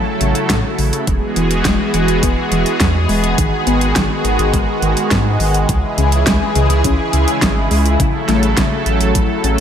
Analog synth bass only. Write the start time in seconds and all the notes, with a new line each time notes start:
0.21 A1
0.50 A2
0.79 A1
1.08 E1
1.37 E1
1.65 E1
1.94 E1
2.08 E1
2.23 E1
2.52 E1
2.81 E2
3.09 E1
3.38 G#1
3.67 G#1
3.96 G#1
4.25 G#1
4.39 G#1
4.54 G#1
4.82 G#1
5.11 G#2
5.40 G#1
5.69 C#2
5.98 C#2
6.27 C#2
6.56 C#2
6.70 C#2
6.84 C#2
7.14 C#2
7.42 G#1
7.71 C#2
8.00 A1
8.29 A1
8.58 A1
8.86 A1
9.01 A1
9.15 A1
9.44 A1